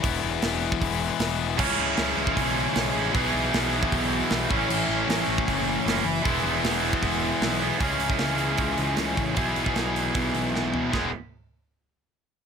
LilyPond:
<<
  \new Staff \with { instrumentName = "Distorted electric guitar" } { \time 4/4 \key e \major \tempo 4 = 154 <e gis b e'>1 | <cis gis cis' e'>1 | <b, e b e' gis'>2.~ <b, e b e' gis'>8 <a, e a cis' e'>8~ | <a, e a cis' e'>2.~ <a, e a cis' e'>8 r8 |
<e gis b e'>1 | <cis e gis cis' gis'>1 | <b, e b e' gis'>1 | <e gis b e'>8 r2. r8 | }
  \new Staff \with { instrumentName = "Distorted electric guitar" } { \time 4/4 \key e \major r1 | <cis e gis cis' gis'>2.~ <cis e gis cis' gis'>8 <cis e gis cis' gis'>8 | <b, e b e' gis'>2.~ <b, e b e' gis'>8 <a, e a cis' e'>8~ | <a, e a cis' e'>2. <a, e a cis' e'>8 r8 |
<e gis b e'>2.~ <e gis b e'>8 <e gis b e'>8 | <cis gis cis' e' gis'>1 | <b, e b e' gis'>1 | <e gis b e' gis'>8 r2. r8 | }
  \new Staff \with { instrumentName = "Picked electric bass" } { \clef bass \time 4/4 \key e \major e,,8 e,,8 e,,4 e,,4 e,,4 | cis,8 cis,8 cis,8 cis,8 b,,4 b,,8 a,,8 | b,,8 b,,8 b,,4 b,,4 b,,8 a,,8 | a,,8 a,,8 a,,8 a,,8 fis,,4 fis,,8 fis,,8 |
e,,8 e,,8 e,,4 e,,4 b,,4 | cis,8 cis,8 cis,4 cis,8 cis,8 cis,8 a,,8 | b,,8 b,,8 b,,4 b,,8 b,,8 b,,8 b,8 | e,,8 r2. r8 | }
  \new DrumStaff \with { instrumentName = "Drums" } \drummode { \time 4/4 <hho bd>4 <hho sn>8. bd16 <hho bd>4 <hho sn>4 | <cymc bd>4 <hho sn>8. bd16 <hho bd>4 <hho sn>4 | <hho bd>4 <hho sn>8. bd16 <hho bd>4 <hho sn>8 bd8 | cymc4 <hho sn>8. bd16 <hho bd>4 <hho sn>4 |
<hho bd>4 <hho sn>8. bd16 <hho bd>4 <hho sn>4 | <hho bd>8 hho16 bd16 <hho sn>8 hho8 <hho bd>8 hho8 <hho sn>8 <hho bd>8 | <hho bd>8 hho16 bd16 <hho sn>8 hho8 <hho bd>8 hho8 sn8 tomfh8 | <bd sn>4 r4 r4 r4 | }
>>